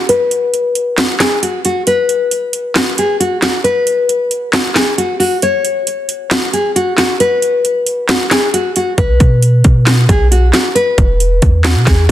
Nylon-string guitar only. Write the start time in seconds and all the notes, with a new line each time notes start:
0.09 B4
0.98 F#4
1.20 G#4
1.42 F#4
1.65 F#4
1.87 B4
2.76 F#4
2.99 G#4
3.20 F#4
3.43 F#4
3.64 B4
4.53 F#4
4.76 G#4
4.98 F#4
5.20 F#4
5.43 C#5
6.31 F#4
6.53 G#4
6.76 F#4
6.98 F#4
7.20 B4
8.09 F#4
8.31 G#4
8.54 F#4
8.76 F#4
8.98 B4
9.87 F#4
10.10 G#4
10.31 F#4
10.54 F#4
10.75 B4
11.64 F#4
11.87 G#4